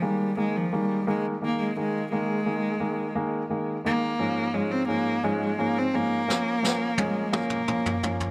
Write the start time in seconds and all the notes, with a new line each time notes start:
0.01 D#3 G3 G#3 A#3
0.37 D#3 G#3 A#3
0.57 F3
0.72 D#3 G3 G#3 A#3
1.07 D#3 G#3 A#3
1.41 D#3 G#3 A#3
1.58 G#3 A#3
1.76 D#3 G#3 A#3
2.12 D#3 G#3 A#3
2.46 D#3 G#3 A#3
2.80 D#3 G#3 A#3
3.15 D#3 G#3 A#3
3.49 D#3 G#3 A#3
3.85 D#3 G#3 A#3
4.19 G#2 F3 G#3 C#4
4.53 G#2 F3 G#3 C#4
4.72 C4
4.88 G#2 F3 G#3 A#3 C#4
5.23 G#2 F3 G#3 C#4
5.58 G#2 F3 G#3 A#3 C#4
5.79 C4
5.93 G#2 F3 G#3 A#3 C#4
6.28 F3 A#3 C#4, snare
6.63 F3 A#3 C#4, snare
6.98 F3 G#3 A#3 C#4, high tom
7.32 F3 A#3 C#4, mid tom
7.50 mid tom
7.68 F3 A#3 C#4, mid tom
7.86 floor tom
8.03 F3 A#3 C#4, floor tom
8.20 floor tom